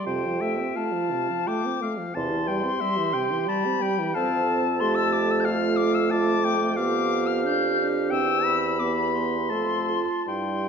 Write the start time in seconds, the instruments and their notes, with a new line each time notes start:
Already playing: clarinet G4
0.06 bassoon F2, french horn C3, oboe C5, flute G5
0.25 french horn F3
0.41 french horn A3, oboe E5
0.59 french horn C4
0.75 french horn A3, clarinet F4, oboe F5, flute A5
0.92 french horn F3
1.11 french horn C3
1.30 french horn F3
1.47 french horn A3, oboe G5, flute D6
1.65 french horn C4
1.81 french horn A3, oboe F5
1.98 french horn F3
2.15 bassoon E2, french horn C3, clarinet G4, oboe A5, flute C6
2.31 french horn E3
2.47 french horn G3, oboe G5
2.63 french horn C4
2.80 french horn G3, oboe E5
2.98 french horn E3
3.14 french horn C3, oboe G5
3.31 french horn E3
3.48 french horn G3, oboe A5, flute B5
3.66 french horn C4
3.81 french horn G3, oboe G5
3.99 french horn E3
4.14 bassoon F2, french horn C4, clarinet A4, oboe F5, flute A5
4.80 french horn A3, clarinet G4, oboe A5, flute C6
4.95 flute E6
5.12 flute D6
5.30 flute E6
5.40 flute G6
5.44 clarinet F4, oboe F5, flute F6
5.76 flute D6
5.94 flute E6
6.11 bassoon F2, clarinet F4, oboe A5, flute D6
6.45 oboe G5
6.75 french horn B3, clarinet G4, oboe F5, flute D6
7.26 flute F6
7.44 french horn D4, flute G6
7.77 french horn D4
8.11 bassoon E2, french horn C4, oboe G5, flute E6
8.44 oboe B5
8.79 french horn B3, clarinet G4, flute D6
8.97 flute B5
9.14 flute C6
9.50 bassoon F2, french horn A3, clarinet A4, oboe A5
9.90 clarinet F4
10.26 bassoon G2, french horn G3, clarinet E4, oboe G5, flute C6